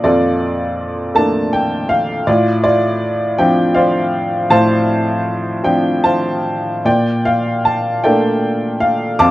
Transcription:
0.00 2.23 F2 soft
0.00 1.11 A3 soft
0.00 1.11 A#3 soft
0.00 1.12 D4 soft
0.00 0.05 F4 soft
0.00 0.05 A4 soft
0.00 0.04 D5 medium
0.00 1.11 D5 medium
0.00 2.29 D#5 soft
0.00 1.89 F5 medium
0.05 1.12 F4 soft
0.05 1.12 A4 soft
1.15 2.23 A3 soft
1.15 2.23 A#3 soft
1.15 2.24 D4 soft
1.15 1.50 A5 medium
1.53 1.91 G5 medium
1.89 2.24 F5 medium
2.27 4.46 A2 medium
2.27 2.63 F4 medium
2.27 2.62 D5 medium
2.64 3.72 F4 soft
2.64 3.41 D5 medium
3.38 5.60 F3 soft
3.38 5.60 C4 soft
3.38 5.60 D4 soft
3.38 3.77 G5 medium
3.75 4.49 C5 soft
3.75 4.83 D5 soft
3.75 4.45 F5 medium
4.50 6.82 A2 medium
4.50 5.61 C5 medium
4.50 5.61 F5 medium
4.50 5.68 A5 medium
5.64 6.81 F3 soft
5.64 6.82 C4 soft
5.64 6.82 D4 soft
5.64 6.01 G5 medium
6.04 6.82 C5 soft
6.04 6.81 F5 soft
6.04 6.88 A5 medium
6.85 9.16 A#2 soft
6.85 8.02 D5 medium
6.85 7.23 G5 medium
7.25 7.63 F5 medium
7.65 8.06 A5 medium
8.04 9.31 A3 soft
8.04 9.31 A#3 soft
8.04 9.31 D4 soft
8.04 9.15 D5 soft
8.04 8.77 G5 medium
8.80 9.18 F5 medium
9.19 9.31 F2 medium
9.19 9.31 F5 medium
9.19 9.31 A5 medium
9.19 9.31 D6 medium

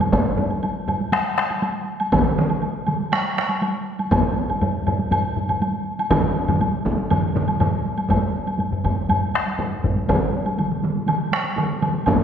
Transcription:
0.00 taiko high medium
0.00 high woodblock soft
0.13 taiko medium
0.13 taiko low-mid medium
0.13 taiko high medium
0.13 high woodblock soft
0.25 taiko low-mid medium
0.37 taiko low-mid loud
0.37 taiko high medium
0.50 taiko high medium
0.50 high woodblock soft
0.63 taiko high medium
0.63 high woodblock soft
0.88 taiko low-mid medium
0.88 taiko high medium
0.88 high woodblock soft
1.01 taiko high medium
1.12 taiko rim medium
1.12 taiko high medium
1.12 high woodblock medium
1.38 taiko rim medium
1.38 taiko high soft
1.50 taiko high medium
1.50 high woodblock soft
1.62 taiko high medium
1.62 high woodblock soft
2.00 taiko high soft
2.00 high woodblock soft
2.12 taiko medium
2.12 taiko mid medium
2.12 taiko high medium
2.12 high woodblock medium
2.26 taiko mid medium
2.38 taiko mid loud
2.38 taiko high medium
2.50 taiko high medium
2.50 high woodblock soft
2.62 taiko high medium
2.62 high woodblock soft
2.87 taiko mid medium
2.87 taiko high medium
2.87 high woodblock soft
3.00 taiko high medium
3.12 taiko rim medium
3.12 taiko high medium
3.12 high woodblock soft
3.38 taiko rim medium
3.38 taiko high medium
3.49 taiko high medium
3.49 high woodblock soft
3.62 taiko high medium
3.62 high woodblock soft
3.99 taiko high medium
3.99 high woodblock soft
4.12 taiko medium
4.12 taiko low-mid medium
4.12 taiko high medium
4.12 high woodblock medium
4.37 taiko high medium
4.49 taiko low-mid medium
4.49 taiko high medium
4.49 high woodblock soft
4.61 taiko low-mid medium
4.61 taiko high medium
4.61 high woodblock soft
4.86 taiko low-mid medium
4.86 taiko high medium
4.86 high woodblock soft
4.99 taiko high medium
5.11 taiko low-mid medium
5.11 taiko high medium
5.11 high woodblock medium
5.36 taiko low-mid medium
5.36 taiko high medium
5.49 taiko low-mid medium
5.49 taiko high medium
5.49 high woodblock soft
5.62 taiko high medium
5.62 high woodblock soft
5.99 taiko high medium
5.99 high woodblock soft
6.11 taiko loud
6.11 taiko low-mid medium
6.11 taiko mid loud
6.11 taiko high medium
6.11 high woodblock medium
6.36 taiko high medium
6.48 taiko low-mid medium
6.48 taiko mid medium
6.48 taiko high medium
6.48 high woodblock soft
6.61 taiko high medium
6.61 high woodblock soft
6.85 taiko medium
6.85 taiko high soft
6.98 taiko high medium
7.10 taiko low-mid medium
7.10 taiko mid medium
7.10 taiko high medium
7.10 high woodblock medium
7.35 taiko low-mid medium
7.35 taiko mid medium
7.35 taiko high soft
7.48 taiko high medium
7.48 high woodblock soft
7.60 taiko low-mid medium
7.60 taiko mid loud
7.60 taiko high medium
7.60 high woodblock soft
7.85 taiko high soft
7.98 taiko high soft
7.98 high woodblock soft
8.10 taiko medium
8.10 taiko low-mid medium
8.10 taiko high medium
8.10 high woodblock soft
8.35 taiko high soft
8.47 taiko high medium
8.47 high woodblock soft
8.59 taiko low-mid medium
8.59 taiko high medium
8.59 high woodblock soft
8.72 taiko low-mid medium
8.84 taiko medium
8.84 taiko low-mid medium
8.84 taiko high soft
8.84 high woodblock soft
8.96 taiko high soft
9.09 taiko low-mid medium
9.09 taiko high medium
9.09 high woodblock soft
9.34 taiko rim medium
9.34 taiko high soft
9.34 high woodblock soft
9.47 taiko high soft
9.59 taiko low-mid medium
9.59 taiko high medium
9.59 high woodblock soft
9.83 taiko medium
9.83 taiko low-mid medium
9.83 taiko high soft
9.96 taiko high soft
10.08 taiko medium
10.08 taiko mid medium
10.08 taiko high medium
10.08 high woodblock soft
10.33 taiko high medium
10.46 taiko high medium
10.46 high woodblock soft
10.58 taiko mid medium
10.58 taiko high medium
10.58 high woodblock soft
10.71 taiko mid medium
10.83 taiko mid medium
10.83 taiko high soft
10.96 taiko high medium
11.07 taiko mid medium
11.07 taiko high medium
11.07 high woodblock soft
11.32 taiko rim medium
11.32 taiko high soft
11.32 high woodblock soft
11.44 taiko high soft
11.56 taiko mid medium
11.56 taiko high medium
11.56 high woodblock soft
11.82 taiko mid loud
11.82 taiko high soft
11.82 high woodblock soft
11.94 taiko high soft
12.06 taiko medium
12.06 taiko low-mid medium
12.06 taiko high medium
12.06 high woodblock soft

